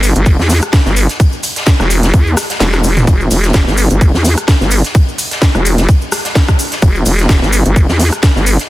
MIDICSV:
0, 0, Header, 1, 3, 480
1, 0, Start_track
1, 0, Key_signature, 1, "minor"
1, 0, Tempo, 468750
1, 1228, Time_signature, 4, 2, 24, 8
1, 8899, End_track
2, 0, Start_track
2, 0, Title_t, "Wobble bass"
2, 0, Program_c, 0, 39
2, 0, Note_on_c, 0, 31, 94
2, 139, Note_off_c, 0, 31, 0
2, 160, Note_on_c, 0, 31, 98
2, 379, Note_off_c, 0, 31, 0
2, 399, Note_on_c, 0, 40, 99
2, 619, Note_off_c, 0, 40, 0
2, 880, Note_on_c, 0, 31, 98
2, 1099, Note_off_c, 0, 31, 0
2, 1840, Note_on_c, 0, 28, 96
2, 2171, Note_off_c, 0, 28, 0
2, 2188, Note_on_c, 0, 40, 94
2, 2411, Note_off_c, 0, 40, 0
2, 2668, Note_on_c, 0, 28, 98
2, 3131, Note_off_c, 0, 28, 0
2, 3148, Note_on_c, 0, 28, 98
2, 3371, Note_off_c, 0, 28, 0
2, 3388, Note_on_c, 0, 28, 90
2, 3611, Note_off_c, 0, 28, 0
2, 3627, Note_on_c, 0, 28, 99
2, 3739, Note_off_c, 0, 28, 0
2, 3762, Note_on_c, 0, 31, 96
2, 3980, Note_off_c, 0, 31, 0
2, 4002, Note_on_c, 0, 31, 97
2, 4220, Note_off_c, 0, 31, 0
2, 4241, Note_on_c, 0, 40, 96
2, 4460, Note_off_c, 0, 40, 0
2, 4721, Note_on_c, 0, 31, 98
2, 4939, Note_off_c, 0, 31, 0
2, 5681, Note_on_c, 0, 28, 97
2, 6011, Note_off_c, 0, 28, 0
2, 6987, Note_on_c, 0, 28, 102
2, 7210, Note_off_c, 0, 28, 0
2, 7227, Note_on_c, 0, 28, 93
2, 7450, Note_off_c, 0, 28, 0
2, 7467, Note_on_c, 0, 28, 99
2, 7579, Note_off_c, 0, 28, 0
2, 7600, Note_on_c, 0, 31, 97
2, 7819, Note_off_c, 0, 31, 0
2, 7840, Note_on_c, 0, 31, 97
2, 8059, Note_off_c, 0, 31, 0
2, 8080, Note_on_c, 0, 40, 97
2, 8299, Note_off_c, 0, 40, 0
2, 8561, Note_on_c, 0, 31, 98
2, 8780, Note_off_c, 0, 31, 0
2, 8899, End_track
3, 0, Start_track
3, 0, Title_t, "Drums"
3, 27, Note_on_c, 9, 42, 72
3, 29, Note_on_c, 9, 46, 96
3, 36, Note_on_c, 9, 69, 88
3, 129, Note_off_c, 9, 42, 0
3, 131, Note_off_c, 9, 46, 0
3, 138, Note_off_c, 9, 69, 0
3, 157, Note_on_c, 9, 69, 40
3, 162, Note_on_c, 9, 42, 67
3, 259, Note_off_c, 9, 69, 0
3, 264, Note_off_c, 9, 42, 0
3, 266, Note_on_c, 9, 69, 50
3, 267, Note_on_c, 9, 36, 109
3, 269, Note_on_c, 9, 42, 54
3, 271, Note_off_c, 9, 42, 0
3, 271, Note_on_c, 9, 42, 83
3, 368, Note_off_c, 9, 69, 0
3, 369, Note_off_c, 9, 36, 0
3, 373, Note_off_c, 9, 42, 0
3, 401, Note_on_c, 9, 69, 22
3, 410, Note_on_c, 9, 38, 49
3, 503, Note_off_c, 9, 69, 0
3, 506, Note_on_c, 9, 69, 95
3, 507, Note_on_c, 9, 42, 67
3, 509, Note_off_c, 9, 38, 0
3, 509, Note_on_c, 9, 38, 38
3, 509, Note_on_c, 9, 46, 97
3, 609, Note_off_c, 9, 42, 0
3, 609, Note_off_c, 9, 69, 0
3, 611, Note_off_c, 9, 46, 0
3, 612, Note_off_c, 9, 38, 0
3, 634, Note_on_c, 9, 69, 35
3, 641, Note_on_c, 9, 37, 63
3, 641, Note_on_c, 9, 42, 66
3, 736, Note_off_c, 9, 69, 0
3, 744, Note_off_c, 9, 37, 0
3, 744, Note_off_c, 9, 42, 0
3, 745, Note_on_c, 9, 42, 90
3, 746, Note_on_c, 9, 38, 116
3, 747, Note_on_c, 9, 36, 115
3, 748, Note_off_c, 9, 42, 0
3, 748, Note_on_c, 9, 42, 53
3, 752, Note_on_c, 9, 69, 44
3, 753, Note_off_c, 9, 38, 0
3, 753, Note_on_c, 9, 38, 107
3, 850, Note_off_c, 9, 36, 0
3, 850, Note_off_c, 9, 42, 0
3, 854, Note_off_c, 9, 69, 0
3, 856, Note_off_c, 9, 38, 0
3, 877, Note_on_c, 9, 38, 39
3, 883, Note_on_c, 9, 69, 23
3, 980, Note_off_c, 9, 38, 0
3, 986, Note_off_c, 9, 69, 0
3, 986, Note_on_c, 9, 42, 68
3, 988, Note_on_c, 9, 46, 99
3, 988, Note_on_c, 9, 69, 84
3, 1088, Note_off_c, 9, 42, 0
3, 1090, Note_off_c, 9, 46, 0
3, 1090, Note_off_c, 9, 69, 0
3, 1117, Note_on_c, 9, 38, 41
3, 1120, Note_on_c, 9, 42, 68
3, 1130, Note_on_c, 9, 69, 36
3, 1219, Note_off_c, 9, 38, 0
3, 1223, Note_off_c, 9, 42, 0
3, 1227, Note_on_c, 9, 36, 107
3, 1227, Note_on_c, 9, 42, 87
3, 1231, Note_off_c, 9, 69, 0
3, 1231, Note_on_c, 9, 69, 50
3, 1330, Note_off_c, 9, 36, 0
3, 1330, Note_off_c, 9, 42, 0
3, 1334, Note_off_c, 9, 69, 0
3, 1355, Note_on_c, 9, 69, 27
3, 1458, Note_off_c, 9, 69, 0
3, 1467, Note_on_c, 9, 46, 103
3, 1468, Note_on_c, 9, 69, 80
3, 1469, Note_on_c, 9, 42, 72
3, 1570, Note_off_c, 9, 46, 0
3, 1570, Note_off_c, 9, 69, 0
3, 1571, Note_off_c, 9, 42, 0
3, 1600, Note_on_c, 9, 42, 68
3, 1603, Note_on_c, 9, 69, 35
3, 1604, Note_on_c, 9, 38, 49
3, 1699, Note_off_c, 9, 42, 0
3, 1699, Note_on_c, 9, 42, 82
3, 1705, Note_off_c, 9, 69, 0
3, 1706, Note_off_c, 9, 38, 0
3, 1706, Note_on_c, 9, 38, 115
3, 1707, Note_off_c, 9, 42, 0
3, 1707, Note_on_c, 9, 36, 115
3, 1707, Note_on_c, 9, 42, 54
3, 1708, Note_off_c, 9, 38, 0
3, 1708, Note_on_c, 9, 38, 113
3, 1711, Note_on_c, 9, 69, 52
3, 1810, Note_off_c, 9, 36, 0
3, 1810, Note_off_c, 9, 42, 0
3, 1811, Note_off_c, 9, 38, 0
3, 1813, Note_off_c, 9, 69, 0
3, 1839, Note_on_c, 9, 38, 38
3, 1840, Note_on_c, 9, 37, 63
3, 1844, Note_on_c, 9, 69, 26
3, 1942, Note_off_c, 9, 38, 0
3, 1943, Note_off_c, 9, 37, 0
3, 1947, Note_off_c, 9, 69, 0
3, 1947, Note_on_c, 9, 46, 98
3, 1952, Note_on_c, 9, 69, 87
3, 1956, Note_on_c, 9, 42, 61
3, 2050, Note_off_c, 9, 46, 0
3, 2055, Note_off_c, 9, 69, 0
3, 2058, Note_off_c, 9, 42, 0
3, 2080, Note_on_c, 9, 42, 69
3, 2083, Note_on_c, 9, 38, 57
3, 2087, Note_on_c, 9, 69, 37
3, 2183, Note_off_c, 9, 42, 0
3, 2185, Note_off_c, 9, 38, 0
3, 2187, Note_on_c, 9, 36, 111
3, 2187, Note_on_c, 9, 42, 55
3, 2189, Note_off_c, 9, 69, 0
3, 2190, Note_on_c, 9, 69, 48
3, 2192, Note_off_c, 9, 42, 0
3, 2192, Note_on_c, 9, 42, 84
3, 2290, Note_off_c, 9, 36, 0
3, 2293, Note_off_c, 9, 69, 0
3, 2295, Note_off_c, 9, 42, 0
3, 2324, Note_on_c, 9, 69, 22
3, 2426, Note_off_c, 9, 69, 0
3, 2426, Note_on_c, 9, 38, 42
3, 2427, Note_on_c, 9, 42, 64
3, 2428, Note_on_c, 9, 37, 86
3, 2428, Note_on_c, 9, 46, 101
3, 2428, Note_on_c, 9, 69, 85
3, 2528, Note_off_c, 9, 38, 0
3, 2529, Note_off_c, 9, 42, 0
3, 2530, Note_off_c, 9, 37, 0
3, 2530, Note_off_c, 9, 46, 0
3, 2531, Note_off_c, 9, 69, 0
3, 2559, Note_on_c, 9, 38, 50
3, 2560, Note_on_c, 9, 42, 66
3, 2564, Note_on_c, 9, 69, 37
3, 2661, Note_off_c, 9, 38, 0
3, 2661, Note_on_c, 9, 38, 111
3, 2662, Note_off_c, 9, 42, 0
3, 2666, Note_off_c, 9, 38, 0
3, 2666, Note_off_c, 9, 69, 0
3, 2666, Note_on_c, 9, 38, 122
3, 2667, Note_on_c, 9, 46, 80
3, 2668, Note_on_c, 9, 42, 52
3, 2668, Note_on_c, 9, 48, 59
3, 2670, Note_on_c, 9, 69, 48
3, 2769, Note_off_c, 9, 38, 0
3, 2769, Note_off_c, 9, 46, 0
3, 2770, Note_off_c, 9, 42, 0
3, 2770, Note_off_c, 9, 48, 0
3, 2773, Note_off_c, 9, 69, 0
3, 2796, Note_on_c, 9, 69, 27
3, 2801, Note_on_c, 9, 37, 84
3, 2801, Note_on_c, 9, 38, 63
3, 2899, Note_off_c, 9, 69, 0
3, 2903, Note_off_c, 9, 37, 0
3, 2903, Note_off_c, 9, 38, 0
3, 2906, Note_on_c, 9, 69, 88
3, 2908, Note_on_c, 9, 46, 99
3, 2912, Note_on_c, 9, 42, 63
3, 3009, Note_off_c, 9, 69, 0
3, 3011, Note_off_c, 9, 46, 0
3, 3014, Note_off_c, 9, 42, 0
3, 3040, Note_on_c, 9, 38, 56
3, 3041, Note_on_c, 9, 42, 67
3, 3041, Note_on_c, 9, 45, 81
3, 3050, Note_on_c, 9, 69, 39
3, 3143, Note_off_c, 9, 38, 0
3, 3143, Note_off_c, 9, 42, 0
3, 3143, Note_off_c, 9, 45, 0
3, 3147, Note_on_c, 9, 36, 114
3, 3147, Note_on_c, 9, 42, 94
3, 3148, Note_off_c, 9, 42, 0
3, 3148, Note_on_c, 9, 42, 53
3, 3149, Note_off_c, 9, 69, 0
3, 3149, Note_on_c, 9, 69, 56
3, 3250, Note_off_c, 9, 36, 0
3, 3251, Note_off_c, 9, 42, 0
3, 3251, Note_off_c, 9, 69, 0
3, 3284, Note_on_c, 9, 69, 27
3, 3386, Note_off_c, 9, 69, 0
3, 3387, Note_on_c, 9, 46, 108
3, 3389, Note_on_c, 9, 69, 88
3, 3391, Note_on_c, 9, 42, 70
3, 3489, Note_off_c, 9, 46, 0
3, 3491, Note_off_c, 9, 69, 0
3, 3493, Note_off_c, 9, 42, 0
3, 3519, Note_on_c, 9, 69, 43
3, 3520, Note_on_c, 9, 38, 47
3, 3520, Note_on_c, 9, 42, 68
3, 3620, Note_off_c, 9, 69, 0
3, 3620, Note_on_c, 9, 69, 49
3, 3622, Note_off_c, 9, 38, 0
3, 3623, Note_off_c, 9, 42, 0
3, 3627, Note_on_c, 9, 36, 119
3, 3627, Note_on_c, 9, 38, 119
3, 3628, Note_on_c, 9, 42, 55
3, 3722, Note_off_c, 9, 69, 0
3, 3730, Note_off_c, 9, 36, 0
3, 3730, Note_off_c, 9, 38, 0
3, 3731, Note_off_c, 9, 42, 0
3, 3761, Note_on_c, 9, 38, 52
3, 3767, Note_on_c, 9, 69, 27
3, 3863, Note_off_c, 9, 69, 0
3, 3863, Note_on_c, 9, 69, 97
3, 3864, Note_off_c, 9, 38, 0
3, 3868, Note_on_c, 9, 46, 105
3, 3869, Note_on_c, 9, 42, 68
3, 3966, Note_off_c, 9, 69, 0
3, 3970, Note_off_c, 9, 46, 0
3, 3971, Note_off_c, 9, 42, 0
3, 4000, Note_on_c, 9, 42, 68
3, 4010, Note_on_c, 9, 69, 36
3, 4103, Note_off_c, 9, 42, 0
3, 4108, Note_on_c, 9, 36, 120
3, 4108, Note_on_c, 9, 42, 79
3, 4112, Note_off_c, 9, 69, 0
3, 4113, Note_on_c, 9, 69, 50
3, 4210, Note_off_c, 9, 36, 0
3, 4211, Note_off_c, 9, 42, 0
3, 4215, Note_off_c, 9, 69, 0
3, 4241, Note_on_c, 9, 38, 48
3, 4248, Note_on_c, 9, 69, 25
3, 4343, Note_off_c, 9, 38, 0
3, 4347, Note_on_c, 9, 38, 41
3, 4348, Note_on_c, 9, 46, 104
3, 4349, Note_off_c, 9, 69, 0
3, 4349, Note_on_c, 9, 69, 88
3, 4350, Note_on_c, 9, 42, 71
3, 4450, Note_off_c, 9, 38, 0
3, 4450, Note_off_c, 9, 46, 0
3, 4451, Note_off_c, 9, 69, 0
3, 4452, Note_off_c, 9, 42, 0
3, 4481, Note_on_c, 9, 37, 60
3, 4481, Note_on_c, 9, 42, 68
3, 4482, Note_on_c, 9, 69, 37
3, 4583, Note_off_c, 9, 37, 0
3, 4583, Note_off_c, 9, 42, 0
3, 4585, Note_off_c, 9, 69, 0
3, 4587, Note_on_c, 9, 36, 115
3, 4587, Note_on_c, 9, 38, 121
3, 4588, Note_on_c, 9, 42, 54
3, 4590, Note_off_c, 9, 42, 0
3, 4590, Note_on_c, 9, 42, 88
3, 4591, Note_off_c, 9, 38, 0
3, 4591, Note_on_c, 9, 38, 118
3, 4591, Note_on_c, 9, 69, 49
3, 4690, Note_off_c, 9, 36, 0
3, 4692, Note_off_c, 9, 42, 0
3, 4693, Note_off_c, 9, 38, 0
3, 4694, Note_off_c, 9, 69, 0
3, 4724, Note_on_c, 9, 69, 28
3, 4726, Note_on_c, 9, 38, 40
3, 4824, Note_off_c, 9, 69, 0
3, 4824, Note_on_c, 9, 69, 91
3, 4826, Note_on_c, 9, 42, 69
3, 4827, Note_on_c, 9, 46, 104
3, 4828, Note_off_c, 9, 38, 0
3, 4926, Note_off_c, 9, 69, 0
3, 4928, Note_off_c, 9, 42, 0
3, 4930, Note_off_c, 9, 46, 0
3, 4961, Note_on_c, 9, 42, 68
3, 4965, Note_on_c, 9, 69, 40
3, 4966, Note_on_c, 9, 38, 44
3, 5063, Note_off_c, 9, 42, 0
3, 5067, Note_off_c, 9, 69, 0
3, 5067, Note_on_c, 9, 36, 118
3, 5068, Note_off_c, 9, 38, 0
3, 5068, Note_on_c, 9, 42, 51
3, 5070, Note_on_c, 9, 69, 55
3, 5170, Note_off_c, 9, 36, 0
3, 5171, Note_off_c, 9, 42, 0
3, 5173, Note_off_c, 9, 69, 0
3, 5207, Note_on_c, 9, 69, 26
3, 5308, Note_on_c, 9, 46, 113
3, 5310, Note_off_c, 9, 69, 0
3, 5312, Note_on_c, 9, 69, 92
3, 5313, Note_on_c, 9, 42, 72
3, 5411, Note_off_c, 9, 46, 0
3, 5414, Note_off_c, 9, 69, 0
3, 5415, Note_off_c, 9, 42, 0
3, 5442, Note_on_c, 9, 38, 46
3, 5442, Note_on_c, 9, 42, 66
3, 5448, Note_on_c, 9, 69, 41
3, 5544, Note_off_c, 9, 38, 0
3, 5544, Note_off_c, 9, 42, 0
3, 5545, Note_on_c, 9, 42, 81
3, 5547, Note_on_c, 9, 38, 125
3, 5548, Note_off_c, 9, 42, 0
3, 5548, Note_on_c, 9, 36, 120
3, 5548, Note_on_c, 9, 42, 52
3, 5550, Note_off_c, 9, 69, 0
3, 5552, Note_off_c, 9, 38, 0
3, 5552, Note_on_c, 9, 38, 118
3, 5552, Note_on_c, 9, 69, 49
3, 5650, Note_off_c, 9, 36, 0
3, 5651, Note_off_c, 9, 42, 0
3, 5655, Note_off_c, 9, 38, 0
3, 5655, Note_off_c, 9, 69, 0
3, 5681, Note_on_c, 9, 37, 60
3, 5683, Note_on_c, 9, 69, 26
3, 5783, Note_off_c, 9, 37, 0
3, 5785, Note_off_c, 9, 69, 0
3, 5785, Note_on_c, 9, 42, 61
3, 5788, Note_on_c, 9, 46, 108
3, 5798, Note_on_c, 9, 69, 100
3, 5887, Note_off_c, 9, 42, 0
3, 5891, Note_off_c, 9, 46, 0
3, 5900, Note_off_c, 9, 69, 0
3, 5911, Note_on_c, 9, 38, 56
3, 5921, Note_on_c, 9, 42, 66
3, 5925, Note_on_c, 9, 69, 44
3, 6014, Note_off_c, 9, 38, 0
3, 6024, Note_off_c, 9, 42, 0
3, 6027, Note_off_c, 9, 69, 0
3, 6027, Note_on_c, 9, 36, 123
3, 6028, Note_on_c, 9, 42, 83
3, 6029, Note_off_c, 9, 42, 0
3, 6029, Note_on_c, 9, 42, 53
3, 6037, Note_on_c, 9, 69, 50
3, 6130, Note_off_c, 9, 36, 0
3, 6131, Note_off_c, 9, 42, 0
3, 6139, Note_off_c, 9, 69, 0
3, 6160, Note_on_c, 9, 69, 28
3, 6262, Note_off_c, 9, 69, 0
3, 6266, Note_on_c, 9, 69, 87
3, 6267, Note_on_c, 9, 38, 42
3, 6269, Note_on_c, 9, 37, 78
3, 6269, Note_on_c, 9, 46, 109
3, 6271, Note_on_c, 9, 42, 68
3, 6369, Note_off_c, 9, 38, 0
3, 6369, Note_off_c, 9, 69, 0
3, 6371, Note_off_c, 9, 37, 0
3, 6371, Note_off_c, 9, 46, 0
3, 6373, Note_off_c, 9, 42, 0
3, 6396, Note_on_c, 9, 38, 53
3, 6401, Note_on_c, 9, 42, 65
3, 6403, Note_on_c, 9, 69, 42
3, 6499, Note_off_c, 9, 38, 0
3, 6504, Note_off_c, 9, 42, 0
3, 6506, Note_off_c, 9, 69, 0
3, 6507, Note_on_c, 9, 36, 122
3, 6507, Note_on_c, 9, 38, 122
3, 6508, Note_off_c, 9, 38, 0
3, 6508, Note_on_c, 9, 38, 122
3, 6508, Note_on_c, 9, 42, 52
3, 6510, Note_on_c, 9, 46, 76
3, 6510, Note_on_c, 9, 69, 56
3, 6610, Note_off_c, 9, 36, 0
3, 6611, Note_off_c, 9, 38, 0
3, 6611, Note_off_c, 9, 42, 0
3, 6613, Note_off_c, 9, 46, 0
3, 6613, Note_off_c, 9, 69, 0
3, 6640, Note_on_c, 9, 36, 64
3, 6640, Note_on_c, 9, 37, 77
3, 6641, Note_on_c, 9, 69, 25
3, 6742, Note_off_c, 9, 36, 0
3, 6743, Note_off_c, 9, 37, 0
3, 6743, Note_off_c, 9, 69, 0
3, 6747, Note_on_c, 9, 46, 105
3, 6748, Note_on_c, 9, 42, 67
3, 6754, Note_on_c, 9, 69, 98
3, 6850, Note_off_c, 9, 46, 0
3, 6851, Note_off_c, 9, 42, 0
3, 6856, Note_off_c, 9, 69, 0
3, 6880, Note_on_c, 9, 38, 53
3, 6880, Note_on_c, 9, 42, 66
3, 6882, Note_on_c, 9, 69, 39
3, 6982, Note_off_c, 9, 38, 0
3, 6983, Note_off_c, 9, 42, 0
3, 6984, Note_off_c, 9, 69, 0
3, 6984, Note_on_c, 9, 69, 53
3, 6987, Note_on_c, 9, 36, 120
3, 6987, Note_on_c, 9, 42, 49
3, 6989, Note_off_c, 9, 42, 0
3, 6989, Note_on_c, 9, 42, 86
3, 7086, Note_off_c, 9, 69, 0
3, 7089, Note_off_c, 9, 36, 0
3, 7091, Note_off_c, 9, 42, 0
3, 7121, Note_on_c, 9, 69, 25
3, 7223, Note_off_c, 9, 69, 0
3, 7227, Note_on_c, 9, 46, 112
3, 7227, Note_on_c, 9, 69, 92
3, 7230, Note_on_c, 9, 42, 62
3, 7329, Note_off_c, 9, 69, 0
3, 7330, Note_off_c, 9, 46, 0
3, 7332, Note_off_c, 9, 42, 0
3, 7360, Note_on_c, 9, 42, 62
3, 7365, Note_on_c, 9, 69, 42
3, 7368, Note_on_c, 9, 38, 44
3, 7463, Note_off_c, 9, 42, 0
3, 7466, Note_off_c, 9, 38, 0
3, 7466, Note_on_c, 9, 38, 121
3, 7466, Note_on_c, 9, 42, 84
3, 7467, Note_off_c, 9, 42, 0
3, 7467, Note_off_c, 9, 69, 0
3, 7467, Note_on_c, 9, 36, 127
3, 7467, Note_on_c, 9, 42, 51
3, 7476, Note_off_c, 9, 38, 0
3, 7476, Note_on_c, 9, 38, 126
3, 7477, Note_on_c, 9, 69, 59
3, 7569, Note_off_c, 9, 36, 0
3, 7570, Note_off_c, 9, 42, 0
3, 7578, Note_off_c, 9, 38, 0
3, 7579, Note_off_c, 9, 69, 0
3, 7599, Note_on_c, 9, 38, 46
3, 7616, Note_on_c, 9, 69, 26
3, 7702, Note_off_c, 9, 38, 0
3, 7707, Note_on_c, 9, 42, 74
3, 7707, Note_on_c, 9, 46, 109
3, 7709, Note_off_c, 9, 69, 0
3, 7709, Note_on_c, 9, 69, 102
3, 7809, Note_off_c, 9, 42, 0
3, 7809, Note_off_c, 9, 46, 0
3, 7811, Note_off_c, 9, 69, 0
3, 7840, Note_on_c, 9, 42, 62
3, 7840, Note_on_c, 9, 69, 41
3, 7942, Note_off_c, 9, 42, 0
3, 7943, Note_off_c, 9, 69, 0
3, 7945, Note_on_c, 9, 42, 80
3, 7947, Note_on_c, 9, 36, 127
3, 7948, Note_off_c, 9, 42, 0
3, 7948, Note_on_c, 9, 42, 50
3, 7952, Note_on_c, 9, 69, 53
3, 8050, Note_off_c, 9, 36, 0
3, 8050, Note_off_c, 9, 42, 0
3, 8054, Note_off_c, 9, 69, 0
3, 8072, Note_on_c, 9, 38, 52
3, 8085, Note_on_c, 9, 69, 25
3, 8175, Note_off_c, 9, 38, 0
3, 8183, Note_on_c, 9, 42, 66
3, 8187, Note_on_c, 9, 46, 113
3, 8188, Note_off_c, 9, 69, 0
3, 8190, Note_on_c, 9, 38, 37
3, 8198, Note_on_c, 9, 69, 92
3, 8285, Note_off_c, 9, 42, 0
3, 8290, Note_off_c, 9, 46, 0
3, 8292, Note_off_c, 9, 38, 0
3, 8300, Note_off_c, 9, 69, 0
3, 8320, Note_on_c, 9, 37, 58
3, 8320, Note_on_c, 9, 42, 64
3, 8326, Note_on_c, 9, 69, 43
3, 8422, Note_off_c, 9, 37, 0
3, 8422, Note_off_c, 9, 42, 0
3, 8424, Note_on_c, 9, 38, 122
3, 8424, Note_on_c, 9, 42, 86
3, 8426, Note_off_c, 9, 38, 0
3, 8426, Note_off_c, 9, 69, 0
3, 8426, Note_on_c, 9, 38, 122
3, 8426, Note_on_c, 9, 69, 57
3, 8427, Note_off_c, 9, 42, 0
3, 8427, Note_on_c, 9, 36, 124
3, 8427, Note_on_c, 9, 42, 51
3, 8528, Note_off_c, 9, 38, 0
3, 8528, Note_off_c, 9, 69, 0
3, 8530, Note_off_c, 9, 36, 0
3, 8530, Note_off_c, 9, 42, 0
3, 8561, Note_on_c, 9, 38, 42
3, 8569, Note_on_c, 9, 69, 28
3, 8664, Note_off_c, 9, 38, 0
3, 8666, Note_on_c, 9, 42, 66
3, 8667, Note_on_c, 9, 46, 110
3, 8669, Note_off_c, 9, 69, 0
3, 8669, Note_on_c, 9, 69, 100
3, 8769, Note_off_c, 9, 42, 0
3, 8769, Note_off_c, 9, 46, 0
3, 8772, Note_off_c, 9, 69, 0
3, 8801, Note_on_c, 9, 38, 41
3, 8801, Note_on_c, 9, 42, 64
3, 8805, Note_on_c, 9, 69, 39
3, 8899, Note_off_c, 9, 38, 0
3, 8899, Note_off_c, 9, 42, 0
3, 8899, Note_off_c, 9, 69, 0
3, 8899, End_track
0, 0, End_of_file